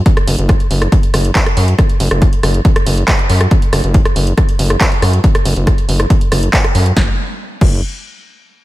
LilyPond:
<<
  \new Staff \with { instrumentName = "Analog synth bass" } { \clef bass \time 4/4 \tempo 4 = 139 r8 fis,,16 fis,,8 r16 fis,,8 r8 fis,,8 r8 fis,8 | r8 fis,,16 fis,,8 r16 fis,,8 r8 fis,,8 r8 fis,8 | r8 fis,,16 fis,,8 r16 fis,,8 r8 fis,,8 r8 fis,8 | r8 fis,,16 fis,,8 r16 fis,,8 r8 fis,,8 r8 fis,8 |
fis,,16 r4 r16 fis,,8 r2 | }
  \new DrumStaff \with { instrumentName = "Drums" } \drummode { \time 4/4 <hh bd>16 <hh ss>16 hho16 hh16 <hh bd ss>16 hh16 hho16 <hh ss>16 <hh bd>16 hh16 <hho ss>16 hh16 <hc hh bd>16 <hh ss>16 hho16 hh16 | <hh bd ss>16 hh16 hho16 <hh ss>16 <hh bd>16 hh16 <hho ss>16 hh16 <hh bd>16 <hh ss>16 hho16 hh16 <hc hh bd ss>16 hh16 hho16 <hh ss>16 | <hh bd>16 hh16 <hho ss>16 hh16 <hh bd>16 <hh ss>16 hho16 hh16 <hh bd ss>16 hh16 hho16 <hh ss>16 <hc hh bd>16 hh16 <hho ss>16 hh16 | <hh bd>16 <hh ss>16 hho16 hh16 <hh bd ss>16 hh16 hho16 <hh ss>16 <hh bd>16 hh16 <hho ss>16 hh16 <hc hh bd>16 <hh ss>16 hho16 hh16 |
<bd sn>4 r8 <cymc bd>8 r4 r4 | }
>>